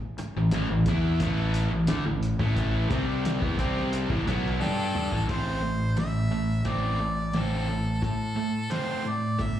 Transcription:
0.18 muted overdriven electric guitar stroke, muted fingered electric bass stroke, closed hi-hat
0.37 fingered electric bass A1, overdriven electric guitar A2 E3
0.51 fingered electric bass A1, overdriven electric guitar A2 E3, snare, closed hi-hat
0.70 fingered electric bass A1, overdriven electric guitar A2 E3
0.86 fingered electric bass E2, overdriven electric guitar E3 B3 E4, kick, closed hi-hat
1.20 fingered electric bass A1, overdriven electric guitar A2 E3 A3, kick, closed hi-hat
1.54 closed hi-hat
1.71 fingered electric bass A1, overdriven electric guitar A2 E3
1.87 fingered electric bass D2, overdriven electric guitar D3 A3, snare, closed hi-hat
2.06 fingered electric bass A1, overdriven electric guitar A2 E3
2.23 closed hi-hat
2.39 fingered electric bass A1, overdriven electric guitar A2 E3 A3, kick, snare
2.56 kick, closed hi-hat
2.90 fingered electric bass C2, overdriven electric guitar C3 G3 C4, kick, closed hi-hat
3.25 snare, closed hi-hat
3.42 fingered electric bass E2, overdriven electric guitar E3 B3, kick
3.59 fingered electric bass C2, overdriven electric guitar C3 G3 C4, kick, closed hi-hat
3.77 snare
3.93 closed hi-hat
4.10 fingered electric bass A1, overdriven electric guitar A2 E3, kick
4.27 fingered electric bass B1, overdriven electric guitar B2 F#3 B3, kick, closed hi-hat
4.46 snare
4.60 fingered electric bass G2, overdriven electric guitar G3 D4 G4, harmonica A4, snare
4.95 mid tom
5.12 fingered electric bass A1, overdriven electric guitar A2 E3, floor tom
5.29 fingered electric bass A1, overdriven electric guitar A2 A3 C4, harmonica C5, kick, closed hi-hat
5.62 overdriven electric guitar A2 A3
5.97 overdriven electric guitar A2 A3, harmonica E5, snare, closed hi-hat
6.31 overdriven electric guitar A2 A3
6.65 fingered electric bass A1, overdriven electric guitar A2 A3 C4, harmonica D5, kick, closed hi-hat
6.99 overdriven electric guitar A2 A3
7.33 overdriven electric guitar A2 A3 C4, snare, closed hi-hat
7.38 harmonica A4
7.68 overdriven electric guitar A2 A3
8.02 overdriven electric guitar A2 A3, fingered electric bass A2, harmonica A4, kick, closed hi-hat
8.36 overdriven electric guitar A2 A3
8.70 overdriven electric guitar A2 A3 C4, harmonica C5, snare, closed hi-hat
9.04 overdriven electric guitar A2 A3
9.09 harmonica D5
9.38 fingered electric bass G1, overdriven electric guitar A2 A3, harmonica E5, kick, closed hi-hat

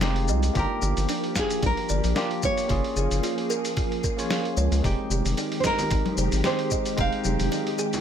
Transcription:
Already playing: analog synth bass F1, string machine D#3 G#3 F4, tine electric piano C4 D#4 G5
0.00 tine electric piano G#3 C4 D#4 G4, kalimba D#4, snare, open hi-hat, shaker
0.16 open hi-hat
0.28 analog synth bass C2, kalimba D#5, shaker
0.43 open hi-hat, shaker
0.54 analog synth bass G1, string machine F3 A#3 G4, tine electric piano A#3 D4 F4 G4, kalimba D4, kick, open hi-hat, shaker
0.59 nylon-string guitar A#4
0.82 analog synth bass G1, kalimba G4, shaker
0.97 analog synth bass G1, open hi-hat, shaker
1.09 kalimba D4, open hi-hat, shaker
1.24 open hi-hat
1.36 nylon-string guitar G#4, kalimba F5, kick, snare, shaker
1.50 open hi-hat, shaker
1.63 analog synth bass A#1, kalimba D4, nylon-string guitar A#4, kick, open hi-hat, shaker
1.77 open hi-hat
1.89 analog synth bass G1, kalimba D5, shaker
2.04 analog synth bass A#1, open hi-hat, shaker
2.16 tine electric piano A#3 D4 F4 G4, kalimba D4, snare, open hi-hat, shaker
2.31 open hi-hat
2.43 nylon-string guitar C#5, kalimba F5, kick, shaker
2.57 open hi-hat, shaker
2.68 analog synth bass F#1, string machine F3 G#4, tine electric piano A#3 C#4 F4 G#4, kalimba F4, kick, open hi-hat, shaker
2.84 open hi-hat
2.97 analog synth bass F#1, kalimba G#4, shaker
3.11 analog synth bass F#1, open hi-hat, shaker
3.23 kalimba F4, open hi-hat, shaker
3.38 open hi-hat
3.50 kalimba A#4, shaker
3.65 open hi-hat, shaker
3.77 kalimba F4, kick, open hi-hat, shaker
3.92 open hi-hat
4.04 kalimba A#4, kick, shaker
4.17 tine electric piano A#3 C#4 F4 C#5, open hi-hat, shaker
4.31 kalimba F5, snare, open hi-hat, shaker
4.45 open hi-hat
4.57 analog synth bass C#2, kalimba C#5, shaker
4.72 analog synth bass C#2, open hi-hat, shaker
4.82 analog synth bass F1, string machine D#3 G#3 G4, tine electric piano G#3 C4 D#4 G4, kalimba D#4, nylon-string guitar G4, kick, open hi-hat, shaker
5.10 analog synth bass F1, kalimba G4, shaker
5.25 analog synth bass F1, open hi-hat, shaker
5.37 kalimba D#4, open hi-hat, shaker
5.52 open hi-hat
5.60 nylon-string guitar C5, snare, shaker
5.65 nylon-string guitar A#4, kalimba D#5, kick
5.79 open hi-hat, low conga, shaker
5.91 analog synth bass G#1, kalimba D#4, kick, open hi-hat, shaker
6.06 open hi-hat, high conga
6.18 analog synth bass F1, kalimba C5, shaker
6.32 analog synth bass G#1, open hi-hat, shaker
6.44 tine electric piano G#3 C4 D#4 G4, kalimba D#4, nylon-string guitar C5, snare, open hi-hat, shaker
6.59 open hi-hat
6.71 kalimba D#5, kick, shaker
6.86 open hi-hat, shaker
6.97 analog synth bass F1, tine electric piano G#3 C4 D#4 G5, kalimba D#4, nylon-string guitar F5, kick, open hi-hat, shaker
7.12 open hi-hat
7.24 analog synth bass F1, kalimba G4, high conga, shaker
7.40 analog synth bass F1, open hi-hat, high conga, shaker
7.52 kalimba D#4, open hi-hat, shaker
7.67 open hi-hat
7.79 kalimba G#4, shaker
7.93 open hi-hat, low conga, shaker

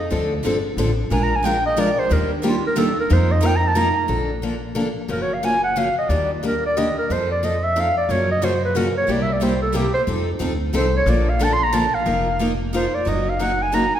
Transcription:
0.11 upright bass D2, steel-string acoustic guitar D3 F3 C4 D4 A4
0.44 upright bass G1, steel-string acoustic guitar D3 F3 C4 D4 A4
0.77 upright bass A1, steel-string acoustic guitar D3 F3 C4 D4 A4
1.11 upright bass A#1, steel-string acoustic guitar F3 G#3 D4 F4 A#4, clarinet G#5
1.23 clarinet A#5
1.36 clarinet G#5
1.45 steel-string acoustic guitar F3 G#3 D4 F4 A#4, clarinet G5
1.66 clarinet D#5
1.77 steel-string acoustic guitar F3 G#3 D4 F4 A#4, clarinet D5
1.99 clarinet C5
2.11 upright bass D#2, steel-string acoustic guitar D#3 G3 A#3 D4 G4, clarinet A#4
2.33 clarinet D4
2.43 steel-string acoustic guitar D#3 G3 A#3 D4 G4, clarinet F4
2.67 clarinet A#4
2.76 steel-string acoustic guitar D#3 G3 A#3 D4 G4, clarinet A4
3.00 clarinet A#4
3.10 upright bass F2, steel-string acoustic guitar F3 A#3 D#4 F4 A#4, clarinet C5
3.31 clarinet D#5
3.42 steel-string acoustic guitar F3 A#3 D#4 F4 A#4, clarinet G5
3.56 clarinet A#5
3.68 clarinet A5
3.75 steel-string acoustic guitar F3 A#3 D#4 F4 A#4, clarinet A#5
4.08 upright bass A#1, steel-string acoustic guitar D3 F3 A#3 D4 A4
4.42 steel-string acoustic guitar D3 F3 A#3 D4 A4
4.75 steel-string acoustic guitar D3 F3 A#3 D4 A4
5.08 upright bass F#1, steel-string acoustic guitar C#3 F3 A#3 C#4 F#4, clarinet A#4
5.22 clarinet C#5
5.34 clarinet F5
5.43 steel-string acoustic guitar C#3 F3 A#3 C#4 F#4, clarinet G#5
5.64 clarinet F#5
5.76 steel-string acoustic guitar C#3 F3 A#3 C#4 F#4, clarinet F5
5.98 clarinet D#5
6.09 upright bass D#2, steel-string acoustic guitar D#3 G3 A#3 D4 G4, clarinet D5
6.33 clarinet F4
6.43 steel-string acoustic guitar D#3 G3 A#3 D4 G4, clarinet A#4
6.66 clarinet D5
6.77 steel-string acoustic guitar D#3 G3 A#3 D4 G4, clarinet D#5
6.98 clarinet A#4
7.10 upright bass F2, steel-string acoustic guitar F3 C4 D#4 A4, clarinet C5
7.31 clarinet D5
7.43 steel-string acoustic guitar F3 C4 D#4 A4, clarinet D#5
7.64 clarinet E5
7.76 steel-string acoustic guitar F3 C4 D#4 A4
7.80 clarinet F5
7.97 clarinet D5
8.09 upright bass F#2, steel-string acoustic guitar C#3 F3 F#3 A#3 C#4 F4 F#4 A#4, clarinet C#5
8.31 clarinet D#5
8.42 steel-string acoustic guitar C#3 F3 F#3 A#3 C#4 F4 F#4 A#4, clarinet C5
8.65 clarinet B4
8.75 steel-string acoustic guitar C#3 F3 F#3 A#3 C#4 F4 F#4 A#4, clarinet A#4
8.97 clarinet C#5
9.08 upright bass C2, steel-string acoustic guitar C3 G3 A#3 E4 G4, clarinet D5
9.22 clarinet E5
9.33 clarinet D5
9.41 steel-string acoustic guitar C3 G3 A#3 E4 G4, clarinet C5
9.62 clarinet A4
9.74 steel-string acoustic guitar C3 G3 A#3 E4 G4, clarinet G4
9.94 clarinet C5
10.07 upright bass F2, steel-string acoustic guitar F3 C4 D#4 A4
10.39 upright bass D2, steel-string acoustic guitar F3 C4 D#4 A4
10.73 upright bass C2, steel-string acoustic guitar F3 C4 D#4 A4, clarinet C5
10.97 clarinet C#5
11.06 upright bass A#1, steel-string acoustic guitar D3 F3 A#3 D4 A4, clarinet D5
11.29 clarinet F5
11.39 steel-string acoustic guitar D3 F3 A#3 D4 A4
11.44 clarinet A5
11.53 clarinet C6
11.64 clarinet A#5
11.73 steel-string acoustic guitar D3 F3 A#3 D4 A4, clarinet A5
11.95 clarinet F5
12.06 upright bass F1, steel-string acoustic guitar F3 A#3 D#4 F4 A#4
12.40 steel-string acoustic guitar F3 A#3 D#4 F4 A#4
12.74 steel-string acoustic guitar F3 A#3 D#4 F4 A#4, clarinet C5
12.95 clarinet D5
13.05 upright bass F#1, steel-string acoustic guitar F#3 A#3 C#4 D#4 F#4 A#4, clarinet D#5
13.30 clarinet F5
13.39 steel-string acoustic guitar F#3 A#3 C#4 D#4 F#4 A#4, clarinet F#5
13.62 clarinet G#5
13.72 steel-string acoustic guitar F#3 A#3 C#4 D#4 F#4 A#4, clarinet A#5
13.95 clarinet G#5

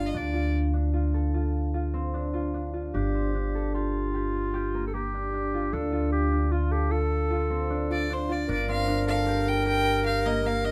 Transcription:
Already playing: upright bass G1, harp A#3 C4 D4 F4 G4
0.06 violin D#5
0.14 upright bass D2, harp D4, violin D5
0.34 harp F4
0.73 harp D4
0.94 harp F4
1.14 harp A4
1.34 harp F4
1.74 harp F4
1.94 harp C4
2.14 harp D4
2.34 harp F4
2.54 harp D4
2.74 harp F4
2.94 upright bass G1, harp D4, clarinet G4
3.14 harp C4
3.34 harp D4
3.55 harp A4
3.74 clarinet F4, harp G4
4.14 harp G4
4.54 harp G4
4.74 harp A#3
4.87 clarinet A4
4.94 harp A#3, clarinet G4
5.14 harp D4
5.33 harp D4
5.54 harp F4
5.73 upright bass D2, harp D4, clarinet A4
5.92 harp F4
6.12 clarinet G4
6.32 harp D4
6.52 harp F4, clarinet F4
6.71 clarinet G4, harp A4
6.91 harp F4, clarinet A4
7.30 harp F4
7.50 harp C4
7.70 harp D4
7.90 harp F4, violin D5
8.10 harp D4, violin C5
8.29 harp F4, violin D5
8.48 upright bass G1, harp D4, clarinet A#4, violin D5
8.68 harp C4, violin F5
8.88 harp D4
9.07 harp A4, violin F5
9.26 harp G4
9.48 violin G5
9.66 harp G4, violin G5
10.05 harp G4, violin F5
10.25 harp A#3, violin D#5
10.45 harp A#3, violin F5
10.64 harp D4, violin D#5

